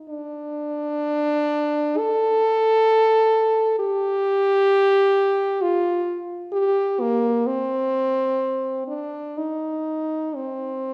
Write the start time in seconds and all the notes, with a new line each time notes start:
0.09 D4
1.98 A4
3.79 G4
5.62 F4
6.53 G4
7.01 A#3
7.47 C4
8.87 D4
9.38 D#4
10.36 C4